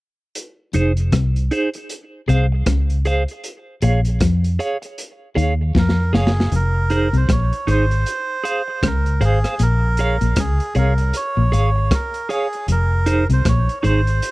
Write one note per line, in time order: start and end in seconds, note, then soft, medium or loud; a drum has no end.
0.35 closed hi-hat medium
0.73 1.11 F1 medium
0.73 0.97 F2 medium
0.73 0.91 D#4 medium
0.73 0.92 G#4 medium
0.73 0.92 C5 medium
0.73 closed hi-hat medium
0.97 closed hi-hat soft
1.12 1.49 C2 medium
1.12 1.35 C3 medium
1.12 kick loud
1.12 cross-stick loud
1.12 closed hi-hat loud
1.36 closed hi-hat medium
1.51 1.68 D#4 medium
1.51 1.69 G#4 medium
1.51 1.69 C5 medium
1.51 closed hi-hat medium
1.74 muted clean electric guitar stroke soft
1.74 closed hi-hat medium
1.89 closed hi-hat medium
2.28 2.65 C2 medium
2.28 2.51 C3 medium
2.28 2.45 G#4 medium
2.28 2.46 C5 medium
2.28 2.46 F5 medium
2.28 closed hi-hat medium
2.52 muted clean electric guitar stroke soft
2.66 3.24 C#2 medium
2.66 2.89 C#3 medium
2.66 kick medium
2.66 cross-stick loud
2.66 closed hi-hat medium
2.90 closed hi-hat medium
3.05 3.23 G#4 medium
3.05 3.23 C5 medium
3.05 3.23 F5 medium
3.05 closed hi-hat medium
3.28 closed hi-hat soft
3.44 closed hi-hat medium
3.82 4.18 A#1 medium
3.82 4.05 A#2 medium
3.82 3.99 G#4 medium
3.82 4.00 C#5 medium
3.82 4.00 F5 medium
3.82 closed hi-hat medium
4.05 closed hi-hat soft
4.20 4.57 F2 medium
4.20 4.44 F3 medium
4.20 kick loud
4.20 cross-stick loud
4.20 closed hi-hat loud
4.44 closed hi-hat medium
4.59 4.76 G#4 medium
4.59 4.77 C#5 medium
4.59 4.77 F5 medium
4.59 closed hi-hat medium
4.82 muted clean electric guitar stroke soft
4.82 closed hi-hat medium
4.98 closed hi-hat medium
5.35 5.72 D#2 medium
5.35 5.59 D#3 medium
5.35 5.53 G#4 medium
5.35 5.53 C#5 medium
5.35 5.54 F5 medium
5.35 closed hi-hat medium
5.75 6.11 F2 medium
5.75 5.98 F3 medium
5.75 6.13 A#4 medium
5.75 kick medium
5.75 snare medium
5.89 snare medium
6.13 6.49 F#1 medium
6.13 6.37 F#2 medium
6.13 6.30 G#4 medium
6.13 6.55 G#4 medium
6.13 6.31 C#5 medium
6.13 6.31 F5 medium
6.13 snare medium
6.27 snare medium
6.40 snare medium
6.52 7.09 F1 loud
6.52 6.75 F2 medium
6.52 7.17 A#4 medium
6.52 closed hi-hat medium
6.90 7.07 D#4 medium
6.90 7.08 G#4 medium
6.90 7.08 C5 medium
6.90 closed hi-hat medium
7.13 7.28 C2 medium
7.13 7.23 C3 medium
7.13 7.31 C5 medium
7.13 closed hi-hat soft
7.29 7.51 A#1 medium
7.29 7.42 A#2 medium
7.29 7.70 C#5 medium
7.29 kick loud
7.29 cross-stick loud
7.29 closed hi-hat loud
7.53 closed hi-hat medium
7.67 8.03 G#1 medium
7.67 7.90 G#2 medium
7.67 7.84 D#4 medium
7.67 7.85 G#4 medium
7.67 7.85 C5 medium
7.67 8.88 C5 medium
7.67 closed hi-hat medium
7.91 muted clean electric guitar stroke medium
7.91 closed hi-hat medium
8.06 closed hi-hat medium
8.44 8.61 G#4 medium
8.44 8.62 C5 medium
8.44 8.62 F5 medium
8.44 closed hi-hat medium
8.68 muted clean electric guitar stroke soft
8.83 9.19 C#2 medium
8.83 9.06 C#3 medium
8.83 9.24 A#4 medium
8.83 kick medium
8.83 cross-stick loud
8.83 closed hi-hat medium
9.06 closed hi-hat soft
9.21 9.43 G#1 medium
9.21 9.35 G#2 medium
9.21 9.38 G#4 medium
9.21 9.63 G#4 medium
9.21 9.38 C5 medium
9.21 9.39 F5 medium
9.21 closed hi-hat medium
9.44 9.54 G#4 soft
9.44 9.54 C5 medium
9.44 9.54 F5 medium
9.44 cross-stick medium
9.44 closed hi-hat soft
9.59 10.17 A#1 medium
9.59 9.83 A#2 medium
9.59 10.40 A#4 medium
9.59 closed hi-hat medium
9.97 10.16 G#4 medium
9.97 10.16 C#5 medium
9.97 10.17 F5 medium
9.97 closed hi-hat medium
10.21 10.36 A#1 medium
10.21 10.31 A#2 medium
10.21 closed hi-hat soft
10.36 10.59 C#2 medium
10.36 10.51 C#3 medium
10.36 10.74 G#4 medium
10.36 kick loud
10.36 cross-stick medium
10.36 closed hi-hat loud
10.60 closed hi-hat medium
10.75 11.11 C2 medium
10.75 10.99 C3 medium
10.75 10.92 G#4 medium
10.75 11.16 A#4 medium
10.75 10.93 C#5 medium
10.75 10.93 F5 medium
10.75 closed hi-hat medium
10.98 muted clean electric guitar stroke soft
10.98 closed hi-hat medium
11.13 11.95 C#5 loud
11.13 closed hi-hat medium
11.37 11.52 A#1 medium
11.37 11.46 A#2 medium
11.52 11.88 G#1 medium
11.52 11.76 G#2 medium
11.52 11.69 G#4 medium
11.52 11.70 C#5 medium
11.52 11.70 F5 medium
11.52 closed hi-hat medium
11.76 muted clean electric guitar stroke soft
11.91 12.29 A#4 medium
11.91 kick medium
11.91 cross-stick loud
11.91 closed hi-hat medium
12.14 closed hi-hat medium
12.29 12.46 G#4 medium
12.29 12.67 G#4 medium
12.29 12.47 C#5 medium
12.29 12.47 F5 medium
12.29 closed hi-hat medium
12.53 closed hi-hat soft
12.68 13.26 F1 loud
12.68 12.91 F2 medium
12.68 13.27 A#4 medium
12.68 closed hi-hat medium
13.06 13.23 D#4 medium
13.06 13.24 G#4 medium
13.06 13.24 C5 medium
13.06 closed hi-hat medium
13.29 13.44 C2 medium
13.29 13.39 C3 medium
13.29 13.47 C5 medium
13.29 closed hi-hat soft
13.45 13.67 A#1 medium
13.45 13.59 A#2 medium
13.45 13.79 C#5 medium
13.45 kick loud
13.45 cross-stick medium
13.45 closed hi-hat loud
13.69 closed hi-hat medium
13.80 14.20 G#1 medium
13.80 14.00 D#4 medium
13.80 14.01 G#4 medium
13.80 13.85 C#5 medium
13.80 closed hi-hat medium
13.85 14.07 G#2 medium
13.85 14.01 C5 medium
13.85 14.31 C5 medium
14.06 muted clean electric guitar stroke soft
14.06 closed hi-hat medium
14.22 closed hi-hat medium